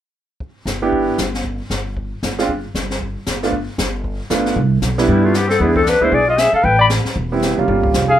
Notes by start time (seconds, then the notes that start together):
0.40 brush sweep, kick
0.65 G1, snare, hi-hat pedal
0.82 B3 D4 E4 G4
0.92 brush sweep, kick
1.18 G1, snare, hi-hat pedal
1.34 snare
1.45 brush sweep, kick
1.70 G1, snare, hi-hat pedal
1.97 brush sweep, kick
2.23 G1, snare, hi-hat pedal
2.38 G#3 C4 D4 F4, snare
2.49 brush sweep, kick
2.74 G1, snare, hi-hat pedal
2.90 snare
3.01 brush sweep, kick
3.26 G1, snare, hi-hat pedal
3.43 A3 B3 D4 F4, snare
3.52 brush sweep, kick
3.78 G1, snare, hi-hat pedal
4.04 brush sweep, kick
4.30 G1 A3 B3 D4 F4, snare, hi-hat pedal
4.46 snare
4.56 C2, brush sweep, kick
4.82 B1, snare, hi-hat pedal
4.98 G3 B3 D4 E4, snare
5.08 G2 G3 E4, brush sweep, kick
5.23 A3 F4
5.34 B3 G4, snare, hi-hat pedal
5.47 C4 A4, snare
5.59 E2 G#3 B3 D4 E4 G#4, brush sweep, kick
5.74 C4 A4, kick
5.84 D4, snare, hi-hat pedal
5.89 B4
6.01 D2 G#3 B3 D4 E4 C5
6.12 B1 G#4 D5, brush sweep, kick
6.28 F4 D#5
6.37 G#4 E5, snare, hi-hat pedal
6.53 A4 F5, muted upright bass stroke
6.63 A1 B4 G5, brush sweep, kick
6.79 D5 B5
6.90 snare, hi-hat pedal
7.05 muted upright bass stroke, snare
7.16 E1, brush sweep, kick
7.32 G3 B3 C4 E4
7.42 snare, hi-hat pedal
7.58 F1 G3 A#3 C#4 F4
7.68 G1 G3 A#3 C#4 F4, brush sweep, kick
7.83 kick
7.94 F1, snare, hi-hat pedal
8.08 G#4 F5